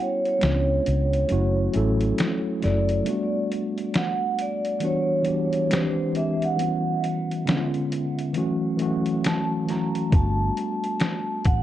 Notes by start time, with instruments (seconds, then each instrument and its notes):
Already playing: tine electric piano G3 B3 C#4 E4 F#4
0.02 vibraphone C#5
0.25 vibraphone C#5, closed hi-hat
0.39 tine electric piano G#3 B3 C#4 D4, finger snap, closed hi-hat
0.43 fingered electric bass C#2, tine electric piano F4, snare
0.86 fingered electric bass C#2, closed hi-hat
1.13 closed hi-hat
1.28 fingered electric bass F#1, tine electric piano F#3 A3 C#4 E4, closed hi-hat
1.32 tine electric piano F#4
1.72 fingered electric bass A1, tine electric piano F#3 A3 C#4 E4, closed hi-hat
1.77 tine electric piano A4
2.01 closed hi-hat
2.18 finger snap, snare, closed hi-hat
2.60 tine electric piano C#3 F#3 A3, vibraphone D5, snare, closed hi-hat
2.64 fingered electric bass F#1, tine electric piano E4 A4
2.89 closed hi-hat
3.04 tine electric piano G3 A3 B3 D4, closed hi-hat
3.09 tine electric piano F#4
3.52 closed hi-hat
3.78 closed hi-hat
3.94 vibraphone F#5, finger snap, snare, closed hi-hat
4.39 vibraphone D5, closed hi-hat
4.65 closed hi-hat
4.79 tine electric piano E3 G3 B3, vibraphone D5, closed hi-hat
4.84 tine electric piano D4 F#4, vibraphone C#5
5.22 tine electric piano E3 G3 B3, closed hi-hat
5.26 tine electric piano D4 G4
5.53 closed hi-hat
5.67 tine electric piano E3 G#3 C4, finger snap
5.71 tine electric piano D4 G4, vibraphone C5, snare, closed hi-hat
6.12 tine electric piano E3 G#3 C4, closed hi-hat
6.16 tine electric piano D4 G4, vibraphone E5
6.42 vibraphone F#5, closed hi-hat
6.56 tine electric piano E3 G3 B3 C#4, closed hi-hat
6.61 tine electric piano F#4
7.04 closed hi-hat
7.31 closed hi-hat
7.45 tine electric piano D3 G#3 B3 C#4, finger snap, snare, closed hi-hat
7.50 tine electric piano D4
7.57 tine electric piano F4
7.74 closed hi-hat
7.92 closed hi-hat
8.19 closed hi-hat
8.33 tine electric piano E3 F#3 A3 C#4, closed hi-hat
8.38 tine electric piano F#4
8.77 tine electric piano E3 F#3 A3 C#4, closed hi-hat
8.82 tine electric piano F#4
9.06 closed hi-hat
9.24 vibraphone A5, finger snap, snare, closed hi-hat
9.65 tine electric piano E3 F#3 A3, closed hi-hat
9.69 tine electric piano C#4 F#4, vibraphone A#5, snare
9.95 closed hi-hat
10.10 fingered electric bass G1, tine electric piano G3 A3 B3, kick, closed hi-hat
10.14 tine electric piano D4 F#4, vibraphone A5
10.57 closed hi-hat
10.84 closed hi-hat
11.00 finger snap, snare, closed hi-hat
11.45 fingered electric bass A1, vibraphone F#5, kick, closed hi-hat